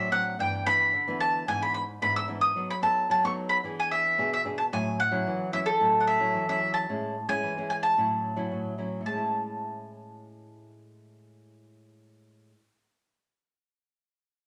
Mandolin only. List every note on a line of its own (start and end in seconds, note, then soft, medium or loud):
0.00 0.11 E5 medium
0.12 0.37 F#5 loud
0.40 0.65 G5 medium
0.66 1.17 B5 loud
1.20 1.46 A5 medium
1.48 1.62 G#5 loud
1.62 1.73 B5 medium
1.74 1.82 B5 medium
2.02 2.16 B5 medium
2.16 2.23 E6 medium
2.41 2.70 D#6 medium
2.70 2.75 B5 medium
2.83 3.08 A5 loud
3.11 3.23 A5 medium
3.25 3.32 C#6 medium
3.49 3.57 B5 loud
3.80 3.91 G#5 medium
3.91 4.29 E5 medium
4.33 4.41 E5 medium
4.58 4.63 A5 medium
4.73 4.99 G#5 loud
5.00 5.53 F#5 loud
5.53 5.58 E5 medium
5.66 6.57 A4 medium
6.00 6.07 F#5 medium
6.07 6.45 E5 medium
6.49 6.73 E5 medium
6.74 7.25 A5 medium
7.29 7.67 G#5 loud
7.70 7.75 G#5 medium
7.83 8.74 A5 medium
9.06 12.33 A5 medium